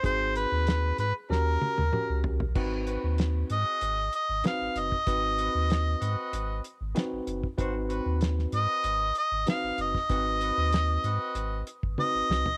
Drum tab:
CC |----------------|x---------------|----------------|----------------|
HH |x-x-x-x---------|--x-x-x-x-x-x-x-|x-x-x-x-x-x-x-x-|x-x-x-x-x-x-x-x-|
SD |----o---o-------|----o-------o---|----o-------o---|----oo------o--o|
T1 |----------oo----|----------------|----------------|----------------|
T2 |------------o---|----------------|----------------|----------------|
FT |--------------oo|----------------|----------------|----------------|
BD |o---------------|o--------------o|o--------------o|o--------------o|

CC |----------------|
HH |x-x-x-x-x-x-----|
SD |----o---------o-|
T1 |------------o---|
T2 |----------------|
FT |---------------o|
BD |o----------o----|